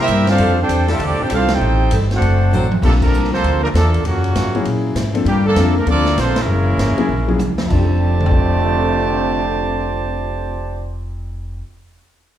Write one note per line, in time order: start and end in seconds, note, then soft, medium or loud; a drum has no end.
0.00 0.27 G3 medium
0.00 0.26 A#3 medium
0.00 0.27 C4 loud
0.00 0.27 E4 loud
0.00 0.27 G4 medium
0.00 0.27 A#4 loud
0.00 0.27 E5 loud
0.08 0.38 G2 medium
0.08 hi-hat pedal medium
0.08 ride medium
0.27 0.57 C4 medium
0.27 0.57 D4 medium
0.27 0.58 D4 medium
0.27 0.57 F4 medium
0.27 0.57 A4 medium
0.27 0.57 C5 medium
0.27 0.58 F5 loud
0.27 snare medium
0.27 ride medium
0.38 0.68 F2 loud
0.38 0.51 G3 loud
0.38 0.51 D4 loud
0.38 0.52 F4 medium
0.38 0.51 A4 loud
0.38 ride medium
0.60 0.88 C4 medium
0.60 0.88 D4 medium
0.60 0.87 G4 loud
0.60 0.89 A4 medium
0.60 0.88 C5 medium
0.60 0.88 G5 loud
0.69 0.99 E2 loud
0.69 hi-hat pedal medium
0.69 ride medium
0.86 1.28 G3 loud
0.86 1.27 D4 loud
0.86 0.99 E4 medium
0.86 1.27 F4 loud
0.86 1.27 A4 loud
0.86 snare medium
0.86 ride soft
0.92 1.01 C4 medium
0.92 1.01 F4 medium
0.92 1.01 A4 medium
0.92 1.01 E5 medium
0.99 1.11 D2 loud
0.99 1.20 D3 medium
0.99 1.20 A3 medium
0.99 1.19 D4 medium
0.99 1.21 D5 loud
0.99 ride medium
1.04 1.21 C4 medium
1.04 1.21 G4 medium
1.04 1.21 A4 medium
1.10 1.20 C2 medium
1.21 1.30 A1 medium
1.21 1.31 C4 medium
1.21 1.32 D4 medium
1.21 1.32 G4 medium
1.21 1.32 A4 medium
1.21 1.32 C5 medium
1.21 1.32 G5 loud
1.29 1.60 C2 loud
1.29 1.42 G3 loud
1.29 1.43 D4 medium
1.29 1.42 F4 medium
1.29 1.49 F4 medium
1.29 1.43 A4 loud
1.29 hi-hat pedal medium
1.29 ride medium
1.33 1.50 C4 medium
1.33 1.50 D4 medium
1.33 1.50 A4 medium
1.33 1.50 C5 medium
1.33 1.50 F5 loud
1.48 1.92 C4 medium
1.48 1.92 D#4 medium
1.48 1.92 G4 medium
1.48 snare loud
1.48 ride medium
1.54 1.94 D#4 loud
1.54 1.94 A4 medium
1.54 1.94 C5 medium
1.54 1.94 G5 loud
1.61 1.90 A1 loud
1.91 2.21 G1 loud
1.91 2.04 G3 medium
1.91 2.04 C4 medium
1.91 2.04 D#4 medium
1.91 2.04 A4 loud
1.91 hi-hat pedal medium
1.91 ride medium
2.11 2.69 A3 medium
2.11 2.69 C4 medium
2.11 2.68 F#4 medium
2.11 snare soft
2.11 ride medium
2.15 2.70 D4 medium
2.15 2.70 A4 medium
2.15 2.70 C5 medium
2.15 2.70 F#5 medium
2.21 2.51 F#1 medium
2.21 ride medium
2.51 2.81 A1 loud
2.51 2.65 F#3 loud
2.51 2.65 C4 loud
2.51 2.65 D4 medium
2.51 2.65 C5 loud
2.51 hi-hat pedal medium
2.51 high tom medium
2.71 high tom medium
2.82 3.12 A#1 loud
2.82 2.91 D3 medium
2.82 2.91 F3 medium
2.82 3.67 F3 medium
2.82 2.91 A3 loud
2.82 3.67 A#3 medium
2.82 2.93 A#3 medium
2.82 3.68 C4 medium
2.82 3.68 D4 medium
2.82 2.93 D4 medium
2.82 3.68 G4 medium
2.82 2.93 A4 loud
2.82 kick loud
2.82 crash loud
3.02 3.30 D3 medium
3.02 3.31 F3 loud
3.02 3.31 A#3 medium
3.02 3.30 D4 medium
3.02 3.30 A4 medium
3.02 3.30 A#4 medium
3.02 kick loud
3.02 crash medium
3.12 3.42 C2 medium
3.12 hi-hat pedal medium
3.24 snare soft
3.32 3.61 D3 loud
3.32 3.61 F3 medium
3.32 3.61 A#3 medium
3.32 3.61 C4 loud
3.32 3.61 F4 medium
3.32 3.61 A4 medium
3.32 3.61 C5 loud
3.32 snare soft
3.43 3.73 D2 loud
3.43 ride medium
3.62 3.67 D3 medium
3.62 3.68 F3 medium
3.62 3.68 A3 medium
3.62 3.68 A#3 medium
3.62 3.68 D4 medium
3.62 3.68 A#4 loud
3.74 4.03 E2 loud
3.74 4.03 D3 medium
3.74 4.03 A#3 medium
3.74 4.03 D4 medium
3.74 4.02 F4 medium
3.74 4.02 A4 medium
3.74 4.03 A4 loud
3.74 snare medium
3.74 hi-hat pedal medium
3.74 ride medium
3.94 ride medium
4.04 4.34 F#2 medium
4.04 4.66 A#2 medium
4.04 4.67 C#3 medium
4.04 4.66 F#3 medium
4.04 4.66 A#3 medium
4.04 4.67 C#4 medium
4.04 4.66 F#4 medium
4.04 ride medium
4.24 ride medium
4.35 4.64 G#2 medium
4.35 snare medium
4.35 hi-hat pedal medium
4.35 ride medium
4.55 4.94 F#3 medium
4.55 4.94 A#3 medium
4.55 4.94 C#4 medium
4.55 4.94 E4 medium
4.55 4.94 G#4 medium
4.55 ride soft
4.65 4.94 A#2 medium
4.65 ride medium
4.95 5.24 G#2 medium
4.95 snare medium
4.95 hi-hat pedal medium
4.95 ride medium
5.13 5.24 F3 medium
5.13 5.25 A#3 medium
5.13 5.25 C4 medium
5.13 5.25 D4 medium
5.13 5.25 A4 medium
5.13 ride medium
5.25 5.55 G2 loud
5.25 5.44 A#2 medium
5.25 5.44 D3 medium
5.25 5.44 G3 medium
5.25 5.44 A#3 medium
5.25 5.44 D4 medium
5.25 5.44 G4 medium
5.25 ride medium
5.45 5.73 D3 medium
5.45 5.73 F3 medium
5.45 5.74 A#3 medium
5.45 5.75 D4 medium
5.45 5.74 A4 medium
5.55 5.86 F2 medium
5.55 5.73 F3 medium
5.55 5.73 A#3 medium
5.55 5.73 C4 medium
5.55 5.74 D4 medium
5.55 5.74 A4 medium
5.55 snare medium
5.55 hi-hat pedal medium
5.55 ride medium
5.75 5.87 D3 medium
5.75 5.86 F3 medium
5.75 5.88 A3 medium
5.75 5.85 A#3 medium
5.75 5.88 D4 medium
5.75 5.88 A#4 medium
5.86 6.16 D2 loud
5.86 6.04 F3 medium
5.86 6.15 F3 medium
5.86 6.15 A#3 loud
5.86 6.04 A#3 medium
5.86 6.04 C4 medium
5.86 6.15 D4 medium
5.86 6.05 D4 medium
5.86 6.17 F4 loud
5.86 6.04 A4 medium
5.86 6.17 A4 loud
5.86 6.17 D5 loud
5.86 ride medium
5.90 6.17 A#3 loud
6.06 snare medium
6.16 6.46 A#1 medium
6.16 6.38 D3 medium
6.16 6.37 F3 medium
6.16 6.38 C4 medium
6.16 6.38 C5 loud
6.16 snare medium
6.16 hi-hat pedal medium
6.16 ride medium
6.20 6.38 A#3 medium
6.20 6.38 F4 medium
6.20 6.38 A4 medium
6.36 7.41 C#3 medium
6.36 7.41 E3 medium
6.36 7.41 A#3 medium
6.36 snare loud
6.36 ride medium
6.40 7.41 G#3 medium
6.40 7.42 C#4 medium
6.40 7.42 E4 medium
6.40 7.42 A#4 loud
6.47 6.77 F#1 loud
6.78 6.96 G#1 medium
6.78 snare medium
6.78 hi-hat pedal medium
6.78 ride medium
6.97 7.08 F#3 medium
6.97 7.08 A#3 medium
6.97 7.08 C#4 medium
6.97 7.08 E4 medium
6.97 7.08 G#4 medium
6.97 muted upright bass stroke soft
6.97 ride medium
7.09 7.38 A#1 medium
7.28 7.38 F#3 medium
7.28 7.38 A#3 medium
7.28 7.38 C#4 medium
7.28 7.39 E4 medium
7.28 7.39 G#4 medium
7.28 high tom medium
7.39 7.69 C#2 medium
7.39 hi-hat pedal medium
7.39 high tom medium
7.58 11.59 F2 medium
7.58 snare loud
7.65 11.62 F3 medium
7.70 11.60 F1 loud
7.70 10.90 F2 loud
7.70 10.90 C3 loud
7.70 10.90 D3 loud
7.70 10.90 A3 loud
7.70 11.65 D4 medium
7.70 10.90 G4 medium
7.70 10.91 C5 medium
7.70 10.90 D5 medium
7.70 10.90 A5 medium
7.70 kick medium
7.70 crash medium
7.78 11.68 G4 medium
7.84 11.71 A4 medium
8.20 mid tom medium
8.26 floor tom medium
8.31 kick medium